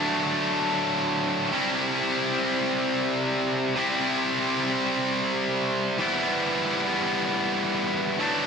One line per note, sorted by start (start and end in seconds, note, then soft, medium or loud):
0.00 1.52 D3 medium
0.00 1.53 F#3 medium
0.00 1.54 A3 medium
0.00 1.54 D4 medium
1.52 3.74 C3 medium
1.52 3.77 G3 medium
1.52 3.76 C4 medium
1.52 3.79 E4 medium
3.76 5.97 C3 medium
3.76 5.98 G3 medium
3.76 5.99 C4 medium
3.76 5.99 E4 medium
5.98 8.19 E3 medium
5.98 8.20 G3 medium
5.98 8.21 B3 medium
5.98 8.21 E4 medium
8.20 8.47 D3 medium
8.20 8.47 F#3 medium
8.20 8.47 A3 medium
8.20 8.47 D4 medium